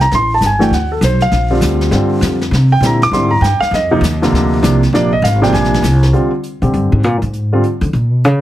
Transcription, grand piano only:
0.01 0.12 A#5 loud
0.15 0.31 C6 loud
0.34 0.43 A5 medium
0.46 0.62 G#5 medium
0.59 0.70 E3 medium
0.59 0.70 A3 medium
0.59 0.70 D4 medium
0.59 0.70 F#4 medium
0.59 0.72 G5 medium
0.74 0.91 F#5 medium
0.92 1.02 A4 medium
1.04 1.21 C5 medium
1.22 1.89 F5 medium
1.50 1.90 D3 medium
1.50 1.90 G3 medium
1.50 1.90 C4 medium
1.50 1.90 F4 medium
1.91 2.37 D3 medium
1.91 2.37 G3 medium
1.91 2.37 C4 medium
1.91 2.37 F4 medium
2.72 2.83 G5 medium
2.82 2.99 D3 medium
2.82 2.99 G3 medium
2.82 2.99 C4 medium
2.82 2.99 E4 medium
2.86 3.02 A#5 medium
3.03 3.13 D6 loud
3.12 3.29 D3 medium
3.12 3.29 G3 medium
3.12 3.30 C4 medium
3.12 3.30 E4 medium
3.12 3.31 C6 medium
3.31 3.42 A#5 medium
3.42 3.60 G5 medium
3.60 3.72 F5 loud
3.74 4.59 D#5 medium
3.91 4.01 C3 medium
3.91 4.02 F3 medium
3.91 4.01 A#3 medium
3.91 4.02 D#4 medium
4.22 4.61 C3 medium
4.22 4.61 D3 medium
4.22 4.61 F3 medium
4.22 4.61 A#3 medium
4.63 4.80 C3 medium
4.63 4.80 F3 medium
4.63 4.80 A#3 medium
4.63 4.80 D4 medium
4.93 5.10 C3 medium
4.93 5.10 F3 medium
4.93 5.10 A#3 medium
4.93 5.10 D4 medium
4.93 5.12 D5 medium
5.13 5.23 D#5 medium
5.24 5.42 F5 medium
5.42 5.81 C3 medium
5.42 5.81 F3 medium
5.42 5.81 A#3 medium
5.42 5.81 D4 medium
5.42 5.53 G5 medium
5.54 6.04 G#5 medium
6.13 6.30 D3 medium
6.13 6.30 G3 medium
6.13 6.30 C4 medium
6.13 6.30 F4 medium
6.62 7.01 D3 soft
6.62 7.01 G3 soft
6.62 7.01 C4 soft
6.62 7.01 G4 medium
7.53 7.63 D3 medium
7.53 7.63 G3 medium
7.53 7.63 C4 soft
7.53 7.63 F4 medium

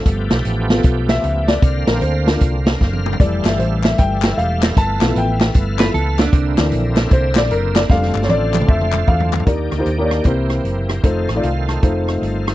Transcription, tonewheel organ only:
0.00 1.60 F3 medium
0.06 1.62 A3 medium
0.06 1.62 B3 medium
0.06 1.62 G4 medium
1.62 3.18 D3 medium
1.62 3.18 A#3 medium
1.62 3.18 C4 medium
1.62 6.29 F5 medium
3.20 6.31 E3 medium
3.20 4.76 G3 medium
3.20 4.75 A3 medium
4.77 6.32 A3 medium
4.77 6.32 B3 medium
6.33 7.88 D3 medium
6.33 7.88 A#3 medium
6.33 9.43 C4 medium
6.33 7.88 E4 medium
7.90 9.45 D3 medium
7.90 9.45 A3 medium
7.90 9.45 F4 medium
9.47 10.25 D#3 medium
9.47 11.03 A#3 soft
9.47 10.25 D4 medium
9.47 11.03 G4 medium
10.26 11.04 E3 medium
10.26 11.81 C4 medium
11.04 11.82 D#3 medium
11.04 12.55 A3 medium
11.04 12.55 F4 medium
11.83 12.55 D#3 medium
11.83 12.55 C4 medium

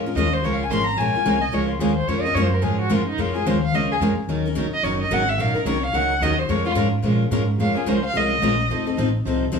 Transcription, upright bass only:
0.00 0.15 F2 medium
0.15 0.42 D#2 loud
0.42 0.69 C#2 medium
0.69 0.97 G#1 medium
0.97 1.12 A#1 medium
1.14 muted upright bass stroke soft
1.26 1.52 C2 loud
1.53 1.79 C#2 medium
1.79 2.07 D#2 medium
2.07 2.34 F2 medium
2.34 2.62 F#2 loud
2.62 2.89 G#2 medium
2.90 3.17 F#2 medium
3.18 3.45 F2 medium
3.46 3.71 D#2 medium
3.72 3.99 C#2 medium
4.00 4.15 F2 medium
4.16 muted upright bass stroke soft
4.28 4.55 D#2 medium
4.56 4.71 C#2 medium
4.72 muted upright bass stroke soft
4.83 5.10 F#1 medium
5.10 5.37 G#1 medium
5.38 5.53 A#1 medium
5.54 muted upright bass stroke soft
5.65 5.92 C2 loud
5.93 6.20 C#2 medium
6.20 6.48 D#2 loud
6.49 6.75 F2 medium
6.75 7.02 G#2 medium
7.03 7.30 A#2 medium
7.31 7.58 G#2 medium
7.58 7.73 F2 medium
7.74 muted upright bass stroke soft
7.86 8.13 C#2 medium
8.14 8.41 C2 medium
8.42 8.69 A#1 medium
8.70 8.96 F1 medium
8.98 9.24 A1 medium
9.25 9.52 C2 medium
9.52 9.59 C#2 medium

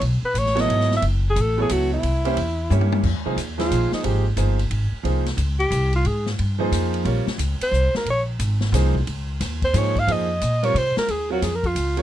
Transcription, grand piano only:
0.55 0.99 F#3 medium
0.55 0.99 B3 medium
0.55 0.99 E4 medium
0.55 0.99 A4 medium
0.55 1.00 C#5 medium
1.58 2.01 F#3 medium
1.58 2.01 B3 medium
1.58 2.01 E4 medium
1.58 2.01 A4 medium
1.58 2.01 C#5 medium
2.25 2.35 A#3 medium
2.25 2.36 C#4 medium
2.25 2.36 E4 medium
2.25 2.36 G4 medium
2.25 2.36 C5 medium
2.70 3.04 A#3 medium
2.70 3.04 C#4 medium
2.70 3.04 E4 medium
2.70 3.04 G4 medium
2.70 3.04 C#5 medium
3.26 3.36 F3 medium
3.26 3.36 A#3 medium
3.26 3.36 D#4 medium
3.26 3.36 G#4 medium
3.26 3.37 C5 medium
3.58 4.01 F3 medium
3.58 4.01 A#3 medium
3.58 4.02 D#4 medium
3.58 4.02 G#4 medium
3.58 4.02 C5 medium
4.03 4.23 F3 medium
4.03 4.23 A#3 medium
4.03 4.23 D#4 medium
4.03 4.24 G#4 medium
4.03 4.24 C5 medium
4.37 4.57 F3 medium
4.37 4.57 A#3 medium
4.37 4.57 D#4 medium
4.37 4.57 G#4 medium
4.37 4.57 C5 medium
5.03 5.23 F3 medium
5.03 5.24 A#3 medium
5.03 5.24 D#4 medium
5.03 5.24 G#4 medium
5.03 5.24 C5 medium
6.59 7.03 F3 medium
6.59 7.03 A#3 medium
6.59 7.03 D#4 medium
6.59 7.03 G#4 medium
6.59 7.04 C5 medium
7.05 7.25 G3 medium
7.05 7.25 C4 medium
7.05 7.25 F4 medium
7.05 7.25 A#4 medium
7.05 7.26 C#5 medium
8.73 8.93 F3 medium
8.73 8.93 A#3 medium
8.73 8.93 D#4 medium
8.73 8.93 G#4 medium
8.73 8.94 C5 medium
9.74 9.93 F3 medium
9.74 9.94 A#3 medium
9.74 9.94 D#4 medium
9.74 9.94 G#4 medium
9.74 9.94 C5 medium
10.07 10.27 F3 medium
10.07 10.27 A#3 medium
10.07 10.27 D#4 medium
10.07 10.28 G#4 medium
10.07 10.28 C5 medium
10.63 10.74 G3 medium
10.63 10.74 C4 medium
10.63 10.74 F4 medium
10.63 10.74 A#4 medium
10.63 10.74 C#5 medium
11.30 11.41 F#3 medium
11.30 11.41 C4 medium
11.30 11.41 F4 medium
11.30 11.42 A#4 medium
11.30 11.42 C#5 medium
11.97 12.02 C3 medium
11.97 12.02 F#3 medium
11.97 12.02 F4 medium
11.97 12.02 A#4 medium
11.97 12.02 C#5 medium

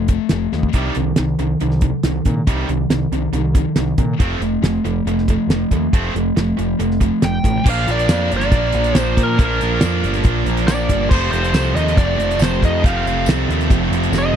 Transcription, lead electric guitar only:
7.25 7.69 G5 medium
7.69 7.88 F5 loud
7.91 8.30 D5 loud
8.37 8.99 D5 medium
8.99 9.23 C5 medium
9.23 9.43 A#4 medium
9.44 9.82 A#4 medium
10.67 11.10 D5 medium
11.10 11.30 C5 medium
11.31 11.75 C5 medium
11.75 11.96 D#5 medium
11.98 12.42 D5 medium
12.43 12.62 C5 medium
12.65 12.85 D#5 medium
12.86 13.25 F5 loud
14.18 14.36 D#5 medium

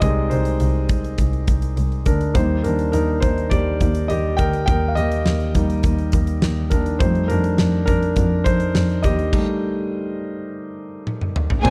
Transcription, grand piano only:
0.00 2.36 G#3 soft
0.00 2.36 C4 soft
0.00 0.02 D#4 medium
0.00 0.30 D#4 medium
0.00 2.36 G4 medium
0.00 0.02 G#4 medium
0.00 0.29 G#4 medium
0.00 2.06 A#4 medium
0.00 0.30 C5 medium
0.00 2.36 D5 medium
0.00 2.37 D#5 medium
0.30 0.86 D#4 medium
0.30 0.85 C5 medium
2.06 2.33 D4 soft
2.06 2.36 A#4 medium
2.34 3.18 G3 soft
2.34 3.18 A#3 soft
2.34 2.62 D#4 medium
2.34 2.62 C5 medium
2.64 2.91 D4 medium
2.64 2.90 A#4 medium
2.92 3.20 D#4 medium
2.92 3.19 A#4 medium
3.20 3.49 D#4 medium
3.20 3.51 C5 medium
3.50 4.06 G4 medium
3.50 4.10 D5 medium
4.08 4.37 G4 medium
4.08 4.39 D#5 medium
4.37 4.66 A#4 medium
4.37 4.64 G5 medium
4.66 4.89 A#4 medium
4.66 4.90 G5 medium
4.88 4.96 F5 medium
4.95 5.51 G4 medium
4.95 5.50 D#5 medium
5.55 6.96 G3 medium
5.55 6.97 A#3 soft
5.55 6.97 D#4 medium
6.70 6.99 D4 medium
6.70 7.01 A#4 medium
6.99 7.39 G3 soft
6.99 7.39 A3 soft
6.99 7.28 D#4 medium
6.99 7.27 C5 medium
7.28 7.84 D4 medium
7.28 7.83 A#4 medium
7.86 8.42 D4 medium
7.86 8.46 A#4 medium
8.44 9.00 D#4 medium
8.44 9.05 C5 loud
9.03 11.03 G4 medium
9.03 11.02 D#5 medium
9.32 11.61 G3 soft
9.32 11.61 A3 soft
9.32 11.61 D#4 soft
11.64 11.70 A#3 medium
11.64 11.70 C4 soft
11.64 11.70 D4 medium
11.64 11.70 F4 medium
11.64 11.70 C5 medium

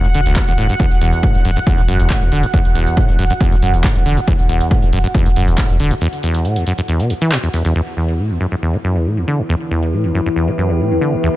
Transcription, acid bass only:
0.04 0.08 B2 medium
0.15 0.21 D3 medium
0.26 0.38 D2 medium
0.36 0.43 E2 medium
0.48 0.53 E2 medium
0.58 0.67 A2 medium
0.69 0.75 G2 medium
0.80 0.86 E2 loud
1.01 1.25 E2 medium
1.23 1.36 A2 medium
1.35 1.43 E2 medium
1.45 1.51 F#2 medium
1.56 1.60 F#2 medium
1.67 1.80 E2 medium
1.78 1.82 B2 medium
1.88 2.01 F#2 medium
2.00 2.12 E2 loud
2.10 2.23 A2 medium
2.22 2.30 E2 medium
2.32 2.45 D3 medium
2.43 2.47 F#2 medium
2.54 2.60 E2 loud
2.75 2.98 E2 medium
2.97 3.10 A2 medium
3.08 3.17 E2 medium
3.19 3.25 F#2 medium
3.30 3.34 F#2 medium
3.41 3.53 E2 medium
3.52 3.55 B2 medium
3.62 3.75 F#2 medium
3.74 3.85 E2 loud
3.84 3.97 A2 medium
3.96 4.04 E2 medium
4.06 4.19 D3 medium
4.17 4.21 F#2 medium
4.28 4.34 E2 loud
4.49 4.72 E2 medium
4.71 4.84 A2 medium
4.82 4.91 E2 medium
4.93 4.99 F#2 medium
5.04 5.08 F#2 medium
5.14 5.27 E2 medium
5.26 5.29 B2 medium
5.36 5.49 F#2 medium
5.48 5.60 E2 loud
5.58 5.71 A2 medium
5.70 5.78 E2 medium
5.80 5.93 D3 medium
5.91 5.95 F#2 medium
6.01 6.08 E2 loud
6.23 6.46 E2 medium
6.45 6.58 A2 medium
6.56 6.65 E2 medium
6.67 6.73 F#2 medium
6.78 6.82 F#2 medium
6.88 7.01 E2 medium
7.00 7.12 B2 medium
7.10 7.14 D2 medium
7.22 7.33 E3 loud
7.32 7.38 B2 loud
7.43 7.49 E2 medium
7.54 7.63 E2 medium
7.65 7.74 E2 loud
7.75 7.82 E2 loud
7.97 8.20 E2 medium
8.19 8.32 A2 medium
8.30 8.39 E2 medium
8.41 8.47 F#2 medium
8.52 8.55 F#2 medium
8.62 8.75 E2 medium
8.74 8.77 B2 medium
8.84 8.97 F#2 medium
8.95 9.07 E2 loud
9.06 9.19 A2 medium
9.17 9.26 E2 medium
9.28 9.40 D3 medium
9.39 9.42 F#2 medium
9.49 9.56 E2 loud
9.71 9.94 E2 medium
9.93 10.06 A2 medium
10.04 10.13 E2 medium
10.15 10.21 F#2 medium
10.26 10.29 F#2 medium
10.36 10.49 E2 medium
10.48 10.51 B2 medium
10.58 10.71 F#2 medium
10.69 10.81 E2 loud
10.80 10.93 A2 medium
10.91 11.00 E2 medium
11.01 11.14 D3 medium
11.13 11.16 F#2 medium
11.23 11.29 E2 loud

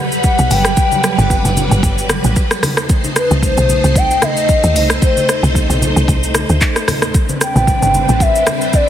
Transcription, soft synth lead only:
0.00 0.24 F#5 loud
0.25 0.53 F#5 loud
0.51 2.10 G5 loud
3.17 3.29 B4 medium
3.44 3.99 C5 loud
3.97 4.25 G5 loud
4.23 4.76 D#5 loud
4.76 4.88 D#5 medium
5.03 5.52 C5 medium
7.42 8.23 G5 loud
8.22 8.76 E5 loud
8.75 8.89 D5 loud

